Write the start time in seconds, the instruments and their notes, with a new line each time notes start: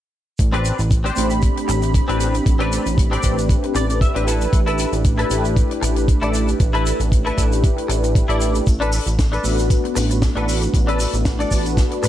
0.38 analog synth bass A1, kick, closed hi-hat, shaker
0.52 clean electric guitar C4 D4 G4 B4, closed hi-hat
0.65 closed hi-hat, shaker
0.79 analog synth bass A1, closed hi-hat, shaker
0.90 kick, closed hi-hat, shaker
1.04 clean electric guitar C4 D4 G4 C5, closed hi-hat
1.15 analog synth bass A1, analog polysynth A3 C4 D4 G4 B5, closed hi-hat, shaker
1.30 closed hi-hat, shaker
1.42 kick, closed hi-hat, shaker
1.56 muted clean electric guitar stroke, closed hi-hat
1.68 analog synth bass A1, muted clean electric guitar stroke, closed hi-hat, shaker
1.82 muted clean electric guitar stroke, closed hi-hat, shaker
1.94 kick, closed hi-hat, shaker
2.07 analog synth bass A1, analog polysynth A3 C4 D4 G4 B5, clean electric guitar C4 D4 G4 B4, closed hi-hat
2.20 closed hi-hat, shaker
2.34 closed hi-hat, shaker
2.46 analog synth bass A1, kick, closed hi-hat, shaker
2.59 clean electric guitar C4 D4 G4 B4, closed hi-hat
2.72 closed hi-hat, shaker
2.86 analog synth bass A1, closed hi-hat, shaker
2.98 kick, closed hi-hat, shaker
3.11 clean electric guitar C4 D4 G4 D5, closed hi-hat
3.22 analog synth bass A1, analog polysynth A3 C4 D4 G4 B4, kick, closed hi-hat, shaker
3.38 closed hi-hat, shaker
3.49 kick, closed hi-hat, shaker
3.63 muted clean electric guitar stroke, closed hi-hat
3.75 analog synth bass A1, clean electric guitar D5, muted clean electric guitar stroke, closed hi-hat, shaker
3.89 muted clean electric guitar stroke, closed hi-hat, shaker
4.01 clean electric guitar E5, kick, closed hi-hat, shaker
4.14 analog synth bass A1, analog polysynth A3 D4 E4 G4 B4, clean electric guitar C4 D4 G4 B4, closed hi-hat
4.26 clean electric guitar E4 A4 B4 A5, closed hi-hat, shaker
4.41 closed hi-hat, shaker
4.53 analog synth bass A1, kick, closed hi-hat, shaker
4.66 clean electric guitar E4 A4 B4, closed hi-hat
4.79 closed hi-hat, shaker
4.92 analog synth bass A1, closed hi-hat, shaker
5.04 kick, closed hi-hat, shaker
5.18 clean electric guitar E4 A4 B4, closed hi-hat
5.30 analog synth bass A1, analog polysynth A3 D4 E4 G4 B4, closed hi-hat, shaker
5.45 closed hi-hat, shaker
5.56 kick, closed hi-hat, shaker
5.70 muted clean electric guitar stroke, closed hi-hat
5.82 analog synth bass A1, muted clean electric guitar stroke, closed hi-hat, shaker
5.96 muted clean electric guitar stroke, closed hi-hat, shaker
6.08 kick, closed hi-hat, shaker
6.21 analog synth bass A1, analog polysynth A3 D4 E4 G4 B4, clean electric guitar E4 A4 D5, closed hi-hat
6.34 closed hi-hat, shaker
6.48 closed hi-hat, shaker
6.60 analog synth bass A1, kick, closed hi-hat, shaker
6.73 clean electric guitar E4 A4 B4, closed hi-hat
6.86 closed hi-hat, shaker
7.00 analog synth bass A1, closed hi-hat, shaker
7.12 kick, closed hi-hat, shaker
7.25 clean electric guitar E4 A4 B4, closed hi-hat
7.37 analog synth bass A1, analog polysynth A3 D4 E4 G4 B4, kick, closed hi-hat, shaker
7.52 closed hi-hat, shaker
7.64 kick, closed hi-hat, shaker
7.77 muted clean electric guitar stroke, closed hi-hat
7.88 analog synth bass A1, muted clean electric guitar stroke, closed hi-hat, shaker
8.03 muted clean electric guitar stroke, closed hi-hat, shaker
8.15 kick, closed hi-hat, shaker
8.28 analog synth bass A1, analog polysynth A3 D4 E4 G4 B4, clean electric guitar E4 A4 D5, closed hi-hat
8.40 closed hi-hat, shaker
8.55 closed hi-hat, shaker
8.66 analog synth bass A1, kick, closed hi-hat, cabasa, shaker
8.80 clean electric guitar D4 A4 B4, closed hi-hat
8.92 open hi-hat, cabasa, shaker
9.06 analog synth bass A1, closed hi-hat, cabasa, shaker
9.19 kick, snare, closed hi-hat, cabasa, shaker
9.32 clean electric guitar D4 A4 B4, closed hi-hat, cabasa
9.43 analog synth bass A1, analog polysynth A3 B3 D4 F#4 B4, open hi-hat, cabasa, shaker
9.59 closed hi-hat, cabasa, shaker
9.70 kick, closed hi-hat, cabasa, shaker
9.84 muted clean electric guitar stroke, closed hi-hat
9.95 analog synth bass A1, muted clean electric guitar stroke, open hi-hat, cabasa, shaker
10.10 muted clean electric guitar stroke, closed hi-hat, cabasa, shaker
10.22 kick, snare, closed hi-hat, cabasa, shaker
10.35 analog synth bass A1, analog polysynth A3 B3 D4 F#4 B4, clean electric guitar D4 A4 B4, closed hi-hat
10.49 open hi-hat, cabasa, shaker
10.61 closed hi-hat, cabasa, shaker
10.74 analog synth bass A1, kick, closed hi-hat, cabasa, shaker
10.87 clean electric guitar D4 A4 B4, closed hi-hat
10.99 open hi-hat, cabasa, shaker
11.13 analog synth bass A1, closed hi-hat, cabasa, shaker
11.25 kick, snare, closed hi-hat, cabasa, shaker
11.39 clean electric guitar D4 A4 D5, closed hi-hat, cabasa
11.50 analog synth bass A1, analog polysynth A3 B3 D4 F#4 B4, kick, open hi-hat, cabasa, shaker
11.66 closed hi-hat, cabasa, shaker
11.77 kick, snare, closed hi-hat, cabasa, shaker
11.91 muted clean electric guitar stroke, closed hi-hat
12.03 analog synth bass A1, muted clean electric guitar stroke, open hi-hat, cabasa, shaker